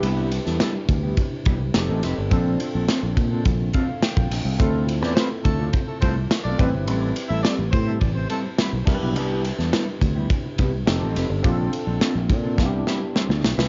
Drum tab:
CC |----------------|----------------|----------------|--------------x-|
RD |x-x-x-x-x-x-x-x-|x-x-x-x-x-x-x-x-|x-x-x-x-x-x-x-x-|x-x-x-x-x-x-x---|
HH |----------------|--------------o-|p---------------|----------------|
SD |---oo-------o-o-|----o-------o-o-|---oo-------o---|----o-------o-o-|
BD |------o-o-o-----|o-----o-o-o--o--|o-----o-o-o---o-|------o-o-----o-|

CC |----------------|----------------|
RD |x-x-x-x-x-x-x-x-|x-x-x-x---------|
HH |----------------|----------------|
SD |---oo-------o-o-|----o---o-o-oooo|
BD |------o-o-o-----|o-----o-o-------|